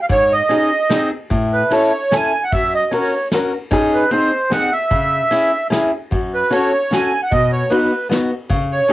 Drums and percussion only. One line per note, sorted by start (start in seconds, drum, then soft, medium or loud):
0.10 kick medium
0.10 ride soft
0.51 ride soft
0.90 snare medium
0.90 ride soft
1.31 kick medium
1.31 ride soft
1.71 ride soft
2.12 snare medium
2.12 ride soft
2.52 kick medium
2.52 ride soft
2.93 ride medium
3.32 snare medium
3.32 ride soft
3.71 kick medium
3.71 ride soft
4.11 ride soft
4.52 snare medium
4.52 ride soft
4.91 kick medium
4.91 ride soft
5.32 ride soft
5.72 snare medium
5.72 ride soft
6.12 kick medium
6.12 ride soft
6.52 ride soft
6.92 snare medium
6.92 ride soft
7.32 kick medium
7.32 ride soft
7.72 ride soft
8.11 snare medium
8.11 ride soft
8.50 kick medium
8.50 ride soft